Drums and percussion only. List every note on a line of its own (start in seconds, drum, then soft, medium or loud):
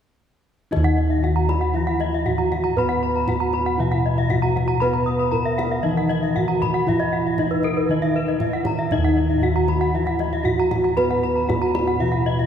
0.73 kendang high soft
0.73 kendang low soft
0.85 kendang slap soft
0.98 kendang slap soft
1.24 kendang slap soft
1.24 kendang low soft
1.49 kendang slap soft
1.49 kendang high soft
2.00 kendang slap soft
2.00 kendang high soft
2.12 kendang slap soft
2.26 kendang low soft
2.40 kendang slap soft
2.52 kendang slap soft
2.52 kendang high soft
2.52 kendang low soft
2.64 kendang slap soft
2.77 kendang low soft
2.89 kendang slap soft
3.03 kendang slap soft
3.28 kendang slap soft
3.28 kendang high soft
3.28 kendang low soft
3.53 kendang slap soft
3.53 kendang high soft
3.91 kendang slap soft
4.17 kendang slap soft
4.30 kendang high soft
4.30 kendang low soft
4.44 kendang slap soft
4.57 kendang slap soft
4.57 kendang high soft
4.57 kendang low soft
4.69 kendang slap soft
4.82 kendang high soft
4.82 kendang low soft
4.95 kendang slap soft
5.07 kendang slap soft
5.33 kendang slap soft
5.33 kendang low soft
5.59 kendang slap soft
5.59 kendang high soft
6.11 kendang slap soft
6.11 kendang high soft
6.23 kendang slap soft
6.37 kendang low soft
6.49 kendang slap soft
6.62 kendang slap soft
6.62 kendang high soft
6.62 kendang low soft
6.75 kendang slap soft
6.89 kendang low soft
7.01 kendang slap soft
7.13 kendang slap soft
7.38 kendang slap soft
7.38 kendang high soft
7.38 kendang low soft
7.63 kendang slap soft
7.63 kendang high soft
8.02 kendang slap soft
8.14 kendang slap soft
8.27 kendang slap soft
8.40 kendang high soft
8.40 kendang low soft
8.53 kendang slap soft
8.65 kendang slap soft
8.65 kendang high soft
8.65 kendang low soft
8.78 kendang slap soft
8.91 kendang high soft
8.91 kendang low soft
9.04 kendang slap soft
9.16 kendang slap soft
9.41 kendang slap soft
9.41 kendang low soft
9.68 kendang slap soft
9.68 kendang high soft
10.06 kendang slap soft
10.19 kendang slap soft
10.19 kendang high soft
10.33 kendang slap soft
10.45 kendang low soft
10.58 kendang slap soft
10.71 kendang slap soft
10.71 kendang high soft
10.71 kendang low soft
10.85 kendang slap soft
10.97 kendang low soft
11.11 kendang slap soft
11.24 kendang slap soft
11.50 kendang slap soft
11.50 kendang high soft
11.50 kendang low soft
11.75 kendang slap soft
11.75 kendang high soft
12.14 kendang slap soft
12.27 kendang slap soft
12.40 kendang slap soft